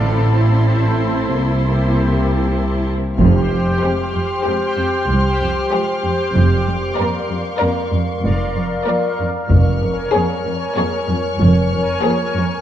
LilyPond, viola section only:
\new Staff \with { instrumentName = "Viola section" } { \time 5/4 \key c \mixolydian \tempo 4 = 95 << { e'1~ e'8 r8 | \key f \minor r1 r4 | r1 r4 | r1 r4 | } \\ { c'2 bes2~ bes8 r8 | r4 aes4 aes4 r4 aes4 | r4 bes4 bes4 r4 bes4 | r4 bes4 bes4 r4 bes4 | } >> }